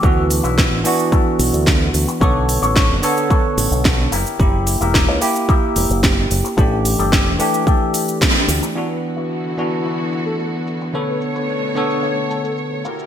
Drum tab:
HH |--o---o---o---o-|--o---o---o---o-|--o---o---o---o-|--o---o---o---o-|
SH |x-xxx-xxx-xxx-xx|x-xxx-xxx-xxx-xx|x-xxx-xxx-xxx-xx|x-xxx-xxx-xxx-xx|
SD |----o-------o---|----o-------o---|----o-------o---|----o-------o---|
BD |o---o---o---o---|o---o---o---o---|o---o---o---o---|o---o---o---o---|

HH |----------------|----------------|
SH |--xxx-xxx-xxx-xx|x-xxx-xxx-xxx-xx|
SD |----------------|----------------|
BD |----------------|----------------|